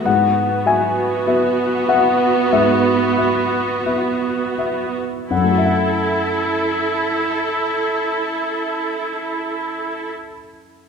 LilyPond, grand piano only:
\new Staff \with { instrumentName = "Grand piano" } { \time 4/4 \key fis \minor \tempo 4 = 43 << { fis''8 gis''4 fis''8 e''4. r8 | <fis, fis a fis' e'' fis''>1 | } \\ { gis,8 <fis' e''>8 <b fis' e''>8 <fis' e''>8 gis,8 <fis' e''>8 <b fis' e''>8 <fis' e''>8 | r1 | } >> }